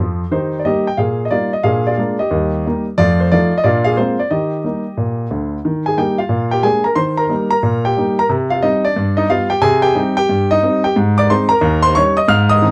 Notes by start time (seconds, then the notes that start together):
Already playing: F3
0.00 F2
0.31 D#3 D#4 G4 C5
0.59 D5
0.65 G3 A#3 D#4 G4 D#5
0.87 G5
0.97 A#2 G#4 F5
1.25 D#5
1.31 G3 A#3 D#4 F4 D5
1.53 D#5
1.63 A#2 D4 G#4 F5
1.87 F4 D5
1.98 G#3 A#3 D4
2.19 G4 D#5
2.31 D#2 G3
2.66 G3 A#3 D#4
2.98 F2 A3 F4 D5
3.20 C5
3.32 F3 A3 D#4 F4 D5
3.58 D#5
3.64 A#2 D4 F4 D5
3.84 G#4 F5
3.97 G#3 A#3 C4 F4 C5
4.20 D5
4.31 D#3 G4 D#5
4.64 G3 A#3 D#4
4.97 A#2
5.31 D2 D3
5.65 D#3
5.86 G#4 G#5
5.97 G3 A#3 D#4 G4 G5
6.18 F4 F5
6.29 A#2
6.51 G4 G5
6.63 G#3 A#3 D4 G#4 G#5
6.84 A#4 A#5
6.95 D#3 C5 C6
7.17 A#4 A#5
7.29 G3 A#3 D#4
7.50 A#4 A#5
7.63 A#2
7.85 G4 G5
7.97 G3 A#3 D#4
8.19 A#4 A#5
8.29 C3
8.50 F4 F5
8.62 G3 C4 D#4 D#5
8.85 D4 D5
8.96 G2
9.17 D#4 D#5
9.30 G3 B3 F4 F5
9.50 G4 G5
9.62 C3 G#4 G#5
9.82 G4 G5
9.95 G3 C4 D#4
10.17 G4 G5
10.29 G2
10.51 D#4 D#5
10.63 G3 C4 D#4
10.84 G4 G5
10.96 G#2
11.18 D5 D6
11.30 G#3 C4 D#4 C5 C6
11.49 A#4 A#5
11.61 D#2
11.82 C5 C6
11.95 G3 C#4 D#4 C#5 C#6
12.17 D#5 D#6
12.28 G#2 F5 F6
12.49 D#5 D#6
12.62 D#3 C4 D#4